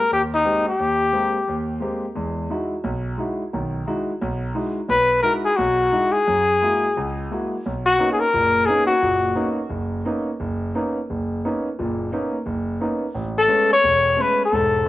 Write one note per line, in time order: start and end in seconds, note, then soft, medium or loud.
0.00 0.13 A#4 medium
0.11 0.40 D#2 medium
0.11 0.22 G4 medium
0.35 0.65 D#4 medium
0.45 0.68 G#3 soft
0.45 0.68 A#3 soft
0.45 0.68 C4 soft
0.45 0.68 G4 medium
0.69 1.66 G4 medium
0.79 1.08 D#2 medium
1.12 1.36 G#3 medium
1.12 1.36 A#3 soft
1.12 1.36 C4 soft
1.12 1.36 G4 medium
1.48 1.77 D#2 medium
1.80 2.04 G#3 medium
1.80 2.04 A#3 soft
1.80 2.04 C4 soft
1.80 2.05 G4 medium
2.15 2.45 E2 medium
2.15 2.45 G#3 medium
2.50 2.73 G#3 soft
2.50 2.73 D#4 soft
2.50 2.73 E4 medium
2.50 2.73 F#4 medium
2.84 3.13 B1 medium
3.17 3.41 G#3 medium
3.17 3.41 D#4 soft
3.17 3.41 E4 soft
3.17 3.41 F#4 medium
3.53 3.82 B1 medium
3.53 3.82 D#3 medium
3.87 4.10 G#3 medium
3.87 4.10 D#4 medium
3.87 4.10 E4 soft
3.87 4.10 F#4 medium
4.21 4.51 B1 medium
4.55 4.78 G#3 medium
4.55 4.78 D#4 soft
4.55 4.78 E4 soft
4.55 4.78 F#4 medium
4.89 5.18 B1 medium
4.89 5.22 B4 loud
5.23 5.46 G#3 medium
5.23 5.46 D#4 medium
5.23 5.47 E4 soft
5.23 5.47 F#4 medium
5.23 5.33 A#4 medium
5.45 5.58 G#4 medium
5.57 5.88 B1 medium
5.57 6.14 F#4 medium
5.92 6.15 G#3 medium
5.92 6.15 D#4 soft
5.92 6.15 E4 soft
5.92 6.16 F#4 medium
6.12 7.29 G#4 medium
6.28 6.57 F#2 medium
6.62 6.84 G#3 medium
6.62 6.84 A#3 soft
6.62 6.84 E4 soft
6.62 6.85 F#4 medium
6.97 7.26 C#2 medium
7.31 7.53 G#3 soft
7.31 7.53 A#3 soft
7.31 7.53 E4 soft
7.31 7.54 F#4 medium
7.66 7.95 B1 medium
7.86 8.10 F#4 medium
7.98 8.21 A#3 medium
7.98 8.22 B3 soft
7.98 8.22 C#4 medium
7.98 8.22 D#4 medium
8.13 8.22 G#4 medium
8.20 8.68 A#4 loud
8.34 8.63 F#1 medium
8.34 8.63 A#2 medium
8.66 8.91 A#3 soft
8.66 8.91 B3 medium
8.66 8.91 C#4 medium
8.66 8.91 D#4 medium
8.66 8.86 G#4 medium
8.87 9.53 F#4 medium
9.02 9.31 F#1 medium
9.02 9.31 A#2 medium
9.35 9.58 A#3 medium
9.35 9.58 B3 soft
9.35 9.59 C#4 medium
9.35 9.59 D#4 medium
9.70 9.99 F#1 medium
10.05 10.28 A#3 medium
10.05 10.28 B3 medium
10.05 10.28 C#4 medium
10.05 10.28 D#4 medium
10.40 10.69 F#1 medium
10.74 10.97 A#3 medium
10.74 10.97 B3 medium
10.74 10.97 C#4 medium
10.74 10.97 D#4 medium
11.10 11.39 F#1 medium
11.45 11.66 A#3 medium
11.45 11.66 B3 medium
11.45 11.67 C#4 medium
11.45 11.67 D#4 medium
11.79 12.08 F#1 medium
11.79 12.08 A#2 medium
12.12 12.35 A#3 medium
12.12 12.35 B3 soft
12.12 12.35 C#4 medium
12.12 12.35 D#4 medium
12.46 12.75 F#1 medium
12.80 13.03 A#3 medium
12.80 13.03 B3 medium
12.80 13.03 C#4 soft
12.80 13.04 D#4 medium
13.15 13.44 A1 medium
13.38 13.69 A4 medium
13.48 13.72 G#3 medium
13.48 13.72 A3 soft
13.48 13.72 B3 soft
13.48 13.72 C#4 medium
13.73 14.23 C#5 loud
13.83 14.13 E1 medium
14.17 14.40 G#3 soft
14.17 14.40 A3 soft
14.17 14.41 B3 soft
14.17 14.41 C#4 medium
14.21 14.41 B4 medium
14.45 14.89 A4 medium
14.52 14.82 E1 medium
14.52 14.82 G#2 medium
14.85 14.89 G#3 medium
14.85 14.89 A3 medium